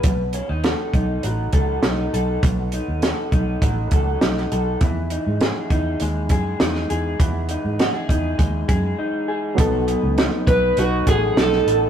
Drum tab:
HH |x-x-x-x-x-x-x-x-|x-x-x-x-x-x-x-x-|x-x-x-x-x-x-x-x-|x-x-x-x-x-x-----|
SD |----o-------o---|----o-------oo--|----o-------oo--|----o-----------|
BD |o-----o---o-----|o-----o-o-o-----|o-----o---o-----|o-----o-o-o-----|

HH |x-x-x-x-x-x-x-x-|
SD |----o-------oo--|
BD |o-----o---o-----|